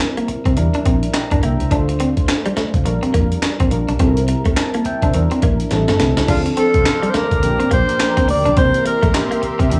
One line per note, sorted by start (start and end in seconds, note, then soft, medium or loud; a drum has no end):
0.00 0.30 G3 medium
0.00 0.30 C4 medium
0.00 0.31 E4 medium
0.00 0.31 A#4 medium
0.00 snare loud
0.00 clap medium
0.00 closed hi-hat medium
0.17 0.26 A#3 medium
0.17 closed hi-hat soft
0.28 muted clean electric guitar stroke soft
0.28 muted fingered electric bass stroke soft
0.28 closed hi-hat medium
0.45 0.54 C2 medium
0.45 0.55 C4 medium
0.45 kick medium
0.45 closed hi-hat soft
0.56 0.70 E2 medium
0.56 1.28 G3 medium
0.56 1.28 D4 medium
0.56 1.28 E4 medium
0.56 1.28 A#4 medium
0.56 muted clean electric guitar stroke soft
0.56 closed hi-hat medium
0.74 0.84 D4 medium
0.74 muted fingered electric bass stroke soft
0.74 closed hi-hat soft
0.86 1.07 A#1 medium
0.86 1.00 C4 medium
0.86 kick medium
0.86 closed hi-hat medium
1.03 closed hi-hat medium
1.14 1.42 G5 medium
1.14 1.41 A#5 medium
1.14 muted clean electric guitar stroke soft
1.14 snare medium
1.14 clap medium
1.14 closed hi-hat medium
1.31 1.40 G1 medium
1.31 1.41 D4 medium
1.31 kick medium
1.31 closed hi-hat medium
1.43 1.56 C2 medium
1.43 1.57 A#3 medium
1.43 1.59 E5 medium
1.43 1.59 G5 medium
1.43 closed hi-hat medium
1.60 1.68 C#2 medium
1.60 1.71 C5 soft
1.60 1.87 E5 medium
1.60 closed hi-hat soft
1.71 2.05 D2 loud
1.71 2.59 A3 medium
1.71 2.59 D4 medium
1.71 1.85 D4 medium
1.71 2.59 F4 medium
1.71 2.60 C5 medium
1.71 kick loud
1.71 closed hi-hat medium
1.89 muted clean electric guitar stroke soft
1.89 closed hi-hat medium
2.00 2.14 C4 medium
2.00 closed hi-hat medium
2.17 kick medium
2.17 closed hi-hat soft
2.28 muted clean electric guitar stroke soft
2.28 snare loud
2.28 clap medium
2.28 closed hi-hat medium
2.46 2.55 G3 medium
2.46 closed hi-hat medium
2.57 2.71 A3 medium
2.57 muted fingered electric bass stroke soft
2.57 snare medium
2.57 closed hi-hat medium
2.74 2.82 C2 medium
2.74 kick medium
2.74 closed hi-hat soft
2.85 2.98 A#1 loud
2.85 3.56 G3 medium
2.85 3.56 D4 medium
2.85 3.57 F4 medium
2.85 3.57 A#4 loud
2.85 muted clean electric guitar stroke soft
2.85 closed hi-hat medium
3.03 3.12 C4 medium
3.03 closed hi-hat soft
3.14 3.36 F2 medium
3.14 3.28 A#3 medium
3.14 kick medium
3.14 closed hi-hat medium
3.32 closed hi-hat medium
3.42 snare loud
3.42 clap medium
3.42 closed hi-hat medium
3.60 3.68 A#1 medium
3.60 3.69 C4 medium
3.60 kick medium
3.60 closed hi-hat medium
3.71 3.84 A#1 medium
3.71 3.94 G3 medium
3.71 3.95 D4 medium
3.71 3.95 F4 medium
3.71 3.95 A#4 medium
3.71 muted clean electric guitar stroke soft
3.71 closed hi-hat medium
3.88 3.97 B1 medium
3.88 3.98 D4 medium
3.88 closed hi-hat soft
3.99 4.34 C2 loud
3.99 4.87 G3 medium
3.99 4.87 C4 medium
3.99 4.14 C4 medium
3.99 4.88 E4 medium
3.99 4.08 A4 medium
3.99 kick loud
3.99 closed hi-hat medium
4.07 4.91 A#4 loud
4.17 closed hi-hat medium
4.28 muted clean electric guitar stroke soft
4.28 closed hi-hat medium
4.45 4.55 A3 medium
4.45 kick medium
4.45 closed hi-hat soft
4.57 4.84 A5 medium
4.57 snare loud
4.57 clap loud
4.57 closed hi-hat medium
4.74 4.83 A#3 medium
4.74 closed hi-hat medium
4.85 5.02 E5 medium
4.85 5.02 G5 medium
4.85 muted fingered electric bass stroke soft
4.85 muted clean electric guitar stroke soft
4.85 closed hi-hat medium
5.02 5.11 C2 medium
5.02 5.12 D4 medium
5.02 5.31 C5 medium
5.02 5.30 E5 medium
5.02 kick medium
5.02 closed hi-hat soft
5.14 5.27 E2 loud
5.14 5.62 G3 medium
5.14 5.62 D4 medium
5.14 5.62 E4 medium
5.14 5.63 A#4 medium
5.14 muted clean electric guitar stroke soft
5.14 closed hi-hat medium
5.31 5.41 C4 medium
5.31 muted fingered electric bass stroke soft
5.31 closed hi-hat soft
5.42 5.64 A#1 medium
5.42 5.57 A#3 medium
5.42 kick loud
5.42 closed hi-hat medium
5.60 closed hi-hat medium
5.71 5.84 A1 loud
5.71 5.95 G3 medium
5.71 5.96 C4 medium
5.71 5.96 E4 medium
5.71 5.96 A4 loud
5.71 muted clean electric guitar stroke soft
5.71 snare medium
5.71 closed hi-hat medium
5.88 5.97 G1 medium
5.88 5.98 A3 medium
5.88 snare medium
5.88 closed hi-hat soft
5.99 6.13 C2 loud
5.99 6.23 G3 medium
5.99 6.14 A3 medium
5.99 6.23 C4 medium
5.99 6.23 E4 medium
5.99 6.24 A4 medium
5.99 snare medium
5.99 closed hi-hat medium
6.17 6.25 C#2 medium
6.17 snare medium
6.17 closed hi-hat soft
6.28 6.41 D2 loud
6.28 7.16 F3 medium
6.28 7.16 C4 medium
6.28 7.16 D4 medium
6.28 6.42 D4 medium
6.28 6.42 F4 medium
6.28 6.36 G#4 medium
6.28 7.41 C5 medium
6.28 7.41 F5 medium
6.28 8.55 D6 medium
6.28 kick loud
6.28 closed hi-hat medium
6.28 crash medium
6.35 7.20 A4 medium
6.46 muted clean electric guitar stroke soft
6.46 closed hi-hat medium
6.57 6.71 C4 medium
6.57 7.11 A4 loud
6.57 closed hi-hat medium
6.74 6.83 C2 medium
6.74 kick medium
6.74 closed hi-hat soft
6.85 muted clean electric guitar stroke soft
6.85 snare loud
6.85 clap loud
6.85 closed hi-hat medium
7.02 7.12 G3 medium
7.02 closed hi-hat medium
7.10 7.18 C5 medium
7.14 7.28 A3 medium
7.14 7.72 A#4 medium
7.14 muted fingered electric bass stroke soft
7.14 snare medium
7.14 closed hi-hat medium
7.31 7.40 D2 medium
7.31 kick medium
7.31 closed hi-hat soft
7.42 7.56 A#1 loud
7.42 7.67 F3 medium
7.42 7.67 A#3 medium
7.42 7.67 D4 medium
7.42 7.67 G4 medium
7.42 8.56 A#4 medium
7.42 8.56 G5 medium
7.42 muted clean electric guitar stroke soft
7.42 closed hi-hat medium
7.60 7.69 C4 medium
7.60 closed hi-hat soft
7.71 7.84 A#1 medium
7.71 8.38 F3 medium
7.71 7.85 A#3 medium
7.71 8.38 A#3 medium
7.71 8.39 D4 medium
7.71 8.39 G4 medium
7.71 8.25 C5 loud
7.71 kick medium
7.71 closed hi-hat medium
7.89 closed hi-hat medium
8.00 snare loud
8.00 clap medium
8.00 closed hi-hat medium
8.17 8.26 C4 medium
8.17 kick medium
8.17 closed hi-hat medium
8.28 8.41 D2 medium
8.28 8.56 D5 loud
8.28 muted clean electric guitar stroke soft
8.28 open hi-hat medium
8.46 8.54 B1 medium
8.46 8.55 D4 medium
8.46 closed hi-hat soft
8.56 8.70 C2 loud
8.56 9.44 E3 medium
8.56 9.45 A#3 medium
8.56 8.71 C4 medium
8.56 9.45 C4 medium
8.56 9.45 G4 medium
8.56 9.70 A#4 medium
8.56 8.84 C5 loud
8.56 9.80 E5 medium
8.56 9.70 C6 medium
8.56 kick loud
8.56 closed hi-hat medium
8.74 closed hi-hat medium
8.86 9.17 A#4 loud
8.86 muted clean electric guitar stroke soft
8.86 closed hi-hat medium
9.03 9.11 A#1 medium
9.03 9.12 A3 medium
9.03 kick medium
9.03 closed hi-hat soft
9.14 9.80 G4 medium
9.14 snare loud
9.14 clap medium
9.14 closed hi-hat medium
9.31 9.40 A#3 medium
9.31 closed hi-hat medium
9.42 muted clean electric guitar stroke soft
9.42 muted fingered electric bass stroke soft
9.42 closed hi-hat medium
9.59 9.68 C2 medium
9.59 9.69 C4 medium
9.59 kick medium
9.59 closed hi-hat medium
9.70 9.80 E2 loud
9.70 9.80 E3 medium
9.70 9.80 A#3 medium
9.70 9.80 D4 medium
9.70 9.80 G4 medium
9.70 9.80 D6 medium
9.70 muted clean electric guitar stroke soft
9.70 closed hi-hat medium